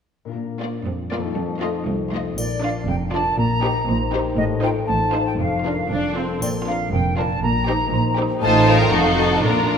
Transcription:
0.25 1.38 A#2 soft
0.25 1.36 D4 soft
0.25 1.26 F4 soft
0.32 0.76 A#2 soft
0.32 1.36 A#4 soft
0.62 0.80 A#3 soft
0.62 0.80 F4 soft
0.62 0.80 D5 soft
0.87 1.26 F2 soft
1.12 1.30 A#3 soft
1.12 1.30 F4 soft
1.12 1.30 D5 soft
1.18 2.31 F2 soft
1.23 2.33 D#4 soft
1.27 3.12 F4 soft
1.31 2.37 A4 soft
1.36 1.76 F2 medium
1.61 1.80 A3 soft
1.61 1.80 F4 soft
1.61 1.80 D#5 soft
1.86 2.27 C2 medium
2.12 2.32 A3 soft
2.12 2.31 F4 soft
2.12 2.32 D#5 soft
2.37 2.78 A#1 soft
2.37 2.78 A#2 soft
2.37 3.37 A#2 soft
2.37 2.61 D5 soft
2.37 triangle soft
2.63 3.41 D4 soft
2.63 2.82 D4 soft
2.63 2.83 F4 soft
2.63 2.83 D5 soft
2.63 2.70 F5 soft
2.88 3.28 F1 soft
2.88 3.28 F2 soft
2.88 4.40 A#4 soft
2.88 2.95 G5 medium
3.13 3.33 D4 soft
3.13 3.40 F4 soft
3.13 3.32 F4 soft
3.13 3.33 D5 soft
3.13 3.38 A5 medium
3.37 3.77 A#1 medium
3.37 4.40 A#2 soft
3.37 3.77 A#2 medium
3.37 4.11 A#5 medium
3.63 4.61 D#4 soft
3.63 3.82 D#4 soft
3.63 3.82 G4 soft
3.63 3.83 C5 soft
3.87 4.27 A#1 medium
3.87 4.27 A#2 medium
3.87 4.87 C5 soft
4.12 4.32 D#4 soft
4.12 4.40 G4 soft
4.12 4.32 G4 soft
4.12 4.33 C5 medium
4.37 4.77 A1 medium
4.37 4.78 A2 medium
4.37 5.41 A2 medium
4.37 4.44 D#5 medium
4.62 5.41 D#4 soft
4.62 4.82 D#4 soft
4.62 4.83 F4 soft
4.62 4.82 C5 soft
4.62 4.69 G5 medium
4.88 5.29 A1 medium
4.88 5.29 A2 medium
4.88 5.42 C5 soft
4.88 5.26 A5 medium
5.14 5.33 D#4 soft
5.14 5.64 F4 soft
5.14 5.33 F4 soft
5.14 5.33 C5 soft
5.26 5.32 G5 soft
5.38 5.80 F1 soft
5.38 5.80 F2 soft
5.38 5.90 F2 soft
5.38 6.15 F5 soft
5.65 5.85 D4 soft
5.65 6.16 F4 soft
5.65 5.85 F4 soft
5.65 5.93 A#4 soft
5.65 5.84 A#4 soft
5.90 6.31 F1 soft
5.90 6.31 F2 soft
5.90 6.44 F2 soft
5.90 6.15 D4 soft
6.16 6.42 C4 soft
6.16 7.17 F4 soft
6.16 6.36 F4 soft
6.16 6.45 A4 soft
6.16 6.36 A4 soft
6.41 6.82 A#1 soft
6.41 6.83 A#2 soft
6.41 7.41 A#2 soft
6.41 6.48 D5 soft
6.41 triangle soft
6.67 7.45 D4 soft
6.67 6.87 D4 soft
6.67 6.86 F4 soft
6.67 6.87 A#4 soft
6.67 6.93 F5 medium
6.92 7.33 F1 soft
6.92 7.33 F2 soft
6.92 8.44 A#4 soft
6.92 7.17 G5 medium
7.17 7.38 D4 soft
7.17 7.37 F4 soft
7.17 7.45 F4 soft
7.17 7.38 A#4 soft
7.17 7.42 A5 medium
7.43 7.82 A#1 medium
7.43 8.44 A#2 soft
7.43 7.83 A#2 medium
7.43 8.16 A#5 medium
7.67 9.46 D#4 soft
7.67 7.87 D#4 soft
7.67 7.86 G4 soft
7.67 7.87 C5 soft
7.92 8.32 A#1 medium
7.92 8.32 A#2 medium
7.92 8.66 C5 soft
8.17 8.36 D#4 soft
8.17 8.44 G4 soft
8.17 8.36 G4 medium
8.17 8.36 C5 medium
8.41 8.89 A1 medium
8.41 8.94 A2 medium
8.41 8.89 A2 medium
8.41 8.89 D#4 medium
8.41 8.89 F4 medium
8.41 8.66 C5 soft
8.41 8.77 A5 medium
8.66 9.78 F4 soft
8.66 8.93 A#4 medium
8.66 9.46 C5 soft
8.80 8.86 G5 medium
8.92 9.44 F1 medium
8.92 9.46 F2 soft
8.92 9.44 F2 medium
8.92 9.44 D#4 soft
8.92 9.44 F#4 soft
8.92 9.45 A4 medium
8.92 9.31 F5 medium
9.18 9.46 F#4 soft
9.18 9.46 A4 soft
9.32 9.38 A5 soft
9.43 9.78 A#1 soft
9.43 9.78 A#2 soft
9.43 9.78 D4 soft
9.43 9.78 F4 soft
9.43 9.78 A#4 soft
9.43 9.78 A#5 soft
9.70 9.78 D4 soft

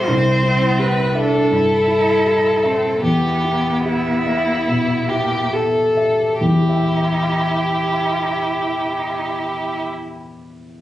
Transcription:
0.00 0.11 B2 soft
0.00 3.00 G3 medium
0.00 0.10 E4 soft
0.00 2.99 E4 medium
0.00 0.11 G4 medium
0.00 0.11 A4 medium
0.00 0.82 C5 medium
0.00 0.10 E5 medium
0.00 2.99 E5 medium
0.08 1.47 C2 medium
0.08 1.15 C4 medium
0.43 1.00 E4 soft
0.79 1.37 G4 soft
0.79 1.17 B4 medium
1.15 1.54 D4 medium
1.15 3.03 A4 medium
1.15 1.73 E5 soft
1.51 2.10 G2 soft
1.51 2.66 E4 medium
1.88 2.48 E4 soft
2.26 2.87 G4 soft
2.63 3.03 C4 medium
2.63 3.03 E5 soft
3.03 4.64 E2 soft
3.03 5.49 B3 medium
3.03 6.37 E4 medium
3.03 6.37 G4 medium
3.03 3.76 G4 soft
3.03 6.37 E5 medium
3.44 4.10 E4 soft
3.85 5.10 E4 soft
3.85 4.52 G4 soft
4.26 4.93 E5 soft
4.68 5.36 B2 soft
5.09 5.79 E4 soft
5.09 5.54 G4 soft
5.53 6.23 G4 soft
5.53 6.40 A4 soft
5.97 6.41 E5 soft
6.40 9.83 E2 soft
6.40 9.82 E4 medium
6.40 9.83 E4 medium
6.40 9.83 G4 medium
6.40 9.82 E5 medium
6.48 9.90 E3 soft
6.55 9.97 E4 soft
6.62 10.04 G4 soft
6.69 10.11 E5 soft
6.76 10.18 G5 soft

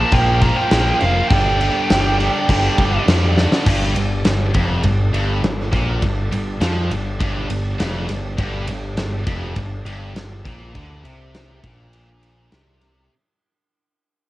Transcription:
0.00 0.10 A#2 loud
0.00 0.11 F3 loud
0.00 0.11 A#3 loud
0.00 0.12 A#3 loud
0.00 1.28 A#3 medium
0.00 0.12 D4 medium
0.00 1.28 F4 medium
0.00 1.28 C5 medium
0.00 0.14 A5 loud
0.12 0.50 A#1 loud
0.12 0.40 A#2 loud
0.12 0.40 F3 loud
0.12 0.41 A#3 loud
0.12 0.41 D4 loud
0.12 0.43 G5 loud
0.12 kick medium
0.12 crash medium
0.41 0.70 A#2 medium
0.41 0.70 F3 medium
0.41 0.71 A#3 loud
0.41 0.72 D4 medium
0.41 0.55 A#5 loud
0.41 kick medium
0.41 crash medium
0.56 1.00 G5 medium
0.71 0.91 A#1 loud
0.71 1.00 A#2 loud
0.71 1.00 F3 medium
0.71 1.01 A#3 loud
0.71 1.02 D4 loud
0.71 snare loud
0.71 crash medium
1.00 1.20 F1 loud
1.00 1.29 A#2 medium
1.00 1.29 F3 loud
1.00 1.29 A#3 loud
1.00 1.31 D4 loud
1.00 1.29 F5 medium
1.00 crash medium
1.29 1.68 G1 loud
1.29 1.59 G2 medium
1.29 1.60 D3 loud
1.29 1.60 G3 loud
1.29 3.64 G3 medium
1.29 1.60 B3 loud
1.29 1.61 D4 loud
1.29 3.64 D4 medium
1.29 3.64 A4 medium
1.29 3.03 G5 medium
1.29 kick loud
1.29 crash medium
1.60 1.88 G2 medium
1.60 1.88 D3 medium
1.60 1.88 G3 loud
1.60 1.89 B3 loud
1.60 1.89 D4 medium
1.60 crash medium
1.89 2.28 G1 medium
1.89 2.18 G2 loud
1.89 2.18 D3 medium
1.89 2.18 G3 loud
1.89 2.19 B3 loud
1.89 2.18 D4 loud
1.89 snare loud
1.89 crash medium
2.19 2.47 G2 medium
2.19 2.47 D3 medium
2.19 2.47 G3 medium
2.19 2.48 B3 loud
2.19 2.48 D4 loud
2.19 crash medium
2.48 2.67 G1 loud
2.48 2.76 G2 loud
2.48 2.76 D3 loud
2.48 2.77 G3 loud
2.48 2.78 B3 loud
2.48 2.78 D4 loud
2.48 kick medium
2.48 crash medium
2.78 2.97 G1 medium
2.78 3.05 G2 medium
2.78 3.06 D3 medium
2.78 3.06 G3 medium
2.78 3.06 B3 loud
2.78 3.07 D4 medium
2.78 kick medium
2.78 crash medium
3.06 3.45 F2 medium
3.06 3.35 G2 medium
3.06 3.36 D3 loud
3.06 3.35 G3 loud
3.06 3.36 B3 medium
3.06 3.36 D4 loud
3.06 snare loud
3.06 crash medium
3.36 3.64 G2 loud
3.36 3.65 D3 medium
3.36 3.65 G3 loud
3.36 3.65 B3 loud
3.36 3.65 D4 loud
3.36 snare medium
3.52 snare medium
3.65 3.94 G1 loud
3.65 3.94 G2 loud
3.65 13.07 G3 medium
3.65 13.07 D4 medium
3.65 13.07 A4 medium
3.65 kick loud
3.65 crash loud
3.95 4.23 G1 medium
3.95 4.19 G2 medium
3.95 ride medium
4.25 4.53 G1 medium
4.25 4.49 G2 medium
4.25 snare loud
4.25 ride loud
4.54 4.82 F1 loud
4.54 4.83 F2 loud
4.54 kick loud
4.54 ride medium
4.83 5.12 G1 medium
4.83 5.08 G2 medium
4.83 kick medium
4.83 ride medium
5.13 5.41 G1 medium
5.13 5.41 G2 loud
5.13 ride medium
5.42 5.70 G1 medium
5.42 5.66 G2 medium
5.42 snare loud
5.42 ride loud
5.72 6.00 A#1 loud
5.72 6.01 A#2 loud
5.72 kick loud
5.72 snare soft
5.72 ride medium
6.02 6.30 G1 medium
6.02 6.26 G2 medium
6.02 kick medium
6.02 ride loud
6.32 6.59 G1 medium
6.32 6.55 G2 medium
6.32 ride medium
6.61 6.89 F2 loud
6.61 6.90 F3 loud
6.61 snare loud
6.61 ride loud
6.91 7.18 G1 medium
6.91 7.14 G2 medium
6.91 ride medium
7.21 7.48 G1 loud
7.21 7.49 G2 loud
7.21 kick loud
7.21 ride loud
7.49 7.77 G1 medium
7.49 7.74 G2 medium
7.49 ride medium
7.79 8.07 F1 loud
7.79 8.08 F2 loud
7.79 snare loud
7.79 ride loud
8.09 8.37 G1 medium
8.09 8.33 G2 medium
8.09 snare soft
8.09 ride medium
8.38 8.66 G1 loud
8.38 8.67 G2 loud
8.38 kick loud
8.38 ride loud
8.68 8.95 G1 medium
8.68 8.92 G2 medium
8.68 ride medium
8.97 9.25 G1 medium
8.97 9.22 G2 medium
8.97 snare loud
8.97 ride loud
9.27 9.54 F1 medium
9.27 9.56 F2 loud
9.27 kick loud
9.27 ride medium
9.56 9.84 G1 medium
9.56 9.81 G2 medium
9.56 kick medium
9.56 ride loud
9.85 10.13 G1 medium
9.85 10.15 G2 loud
9.85 ride medium
10.15 10.43 G1 medium
10.15 10.40 G2 medium
10.15 snare loud
10.15 ride loud
10.45 10.73 A#1 loud
10.45 10.74 A#2 loud
10.45 kick loud
10.45 snare soft
10.45 ride medium
10.75 11.03 D2 loud
10.75 11.04 D3 loud
10.75 kick loud
10.75 ride loud
11.03 11.59 C2 loud
11.03 11.63 C3 loud
11.03 ride medium
11.34 snare loud
11.34 ride loud
11.64 12.48 A#1 medium
11.64 12.52 A#2 loud
11.64 kick loud
11.64 ride medium
11.93 ride loud
12.23 ride medium
12.52 13.07 C2 medium
12.52 13.11 C3 loud
12.52 snare loud
12.52 ride loud
12.82 snare soft
12.82 ride medium

